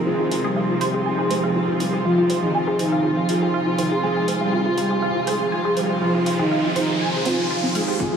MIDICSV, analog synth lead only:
0, 0, Header, 1, 2, 480
1, 0, Start_track
1, 0, Key_signature, -4, "minor"
1, 0, Tempo, 495868
1, 65, Time_signature, 4, 2, 24, 8
1, 7907, End_track
2, 0, Start_track
2, 0, Title_t, "Analog synth lead"
2, 0, Program_c, 0, 81
2, 66, Note_on_c, 0, 68, 96
2, 327, Note_off_c, 0, 68, 0
2, 429, Note_on_c, 0, 67, 87
2, 689, Note_off_c, 0, 67, 0
2, 785, Note_on_c, 0, 67, 92
2, 1136, Note_off_c, 0, 67, 0
2, 1264, Note_on_c, 0, 68, 85
2, 1440, Note_off_c, 0, 68, 0
2, 1744, Note_on_c, 0, 67, 85
2, 1920, Note_off_c, 0, 67, 0
2, 1986, Note_on_c, 0, 65, 98
2, 2247, Note_off_c, 0, 65, 0
2, 2348, Note_on_c, 0, 63, 88
2, 2608, Note_off_c, 0, 63, 0
2, 2704, Note_on_c, 0, 63, 92
2, 3056, Note_off_c, 0, 63, 0
2, 3183, Note_on_c, 0, 65, 87
2, 3360, Note_off_c, 0, 65, 0
2, 3663, Note_on_c, 0, 63, 84
2, 3840, Note_off_c, 0, 63, 0
2, 3904, Note_on_c, 0, 68, 98
2, 4166, Note_off_c, 0, 68, 0
2, 4268, Note_on_c, 0, 67, 90
2, 4528, Note_off_c, 0, 67, 0
2, 4624, Note_on_c, 0, 67, 93
2, 4975, Note_off_c, 0, 67, 0
2, 5105, Note_on_c, 0, 68, 86
2, 5281, Note_off_c, 0, 68, 0
2, 5584, Note_on_c, 0, 67, 88
2, 5760, Note_off_c, 0, 67, 0
2, 5823, Note_on_c, 0, 65, 98
2, 6085, Note_off_c, 0, 65, 0
2, 6186, Note_on_c, 0, 63, 88
2, 6448, Note_off_c, 0, 63, 0
2, 6543, Note_on_c, 0, 63, 95
2, 6895, Note_off_c, 0, 63, 0
2, 7024, Note_on_c, 0, 65, 86
2, 7200, Note_off_c, 0, 65, 0
2, 7503, Note_on_c, 0, 68, 86
2, 7680, Note_off_c, 0, 68, 0
2, 7744, Note_on_c, 0, 68, 94
2, 7907, Note_off_c, 0, 68, 0
2, 7907, End_track
0, 0, End_of_file